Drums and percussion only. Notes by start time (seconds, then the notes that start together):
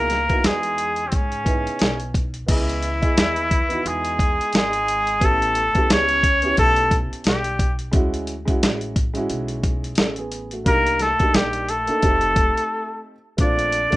0.10 snare, closed hi-hat
0.29 kick, closed hi-hat
0.44 snare, closed hi-hat
0.63 closed hi-hat
0.78 closed hi-hat
0.96 closed hi-hat
1.12 kick, closed hi-hat
1.32 closed hi-hat
1.46 kick, closed hi-hat
1.67 closed hi-hat
1.79 snare, closed hi-hat
2.00 closed hi-hat
2.14 kick, closed hi-hat
2.34 closed hi-hat
2.48 kick, closed hi-hat, crash
2.69 closed hi-hat
2.82 closed hi-hat
3.02 kick, closed hi-hat
3.17 snare, closed hi-hat
3.36 closed hi-hat
3.51 kick, closed hi-hat
3.70 closed hi-hat
3.86 closed hi-hat
4.05 closed hi-hat
4.19 kick, closed hi-hat
4.41 closed hi-hat
4.53 snare, closed hi-hat
4.73 closed hi-hat
4.88 closed hi-hat
5.07 closed hi-hat
5.21 kick, closed hi-hat
5.42 closed hi-hat
5.55 closed hi-hat
5.75 kick, closed hi-hat
5.90 snare, closed hi-hat
6.09 closed hi-hat
6.23 kick, closed hi-hat
6.42 closed hi-hat
6.57 kick, closed hi-hat
6.76 closed hi-hat
6.91 kick, closed hi-hat
7.13 closed hi-hat
7.24 snare, closed hi-hat
7.44 closed hi-hat
7.59 kick, closed hi-hat
7.79 closed hi-hat
7.93 kick, closed hi-hat
8.14 closed hi-hat
8.27 closed hi-hat
8.48 kick, closed hi-hat
8.63 snare, closed hi-hat
8.81 closed hi-hat
8.96 kick, closed hi-hat
9.15 closed hi-hat
9.30 closed hi-hat
9.48 closed hi-hat
9.63 kick, closed hi-hat
9.84 closed hi-hat
9.95 snare, closed hi-hat
10.16 closed hi-hat
10.32 closed hi-hat
10.51 closed hi-hat
10.66 kick, closed hi-hat
10.87 closed hi-hat
10.99 snare, closed hi-hat
11.20 kick, closed hi-hat
11.34 snare, closed hi-hat
11.53 closed hi-hat
11.69 closed hi-hat
11.87 closed hi-hat
12.02 kick, closed hi-hat
12.21 closed hi-hat
12.36 kick, closed hi-hat
12.57 closed hi-hat
13.38 kick, closed hi-hat
13.59 closed hi-hat
13.72 closed hi-hat
13.92 kick, closed hi-hat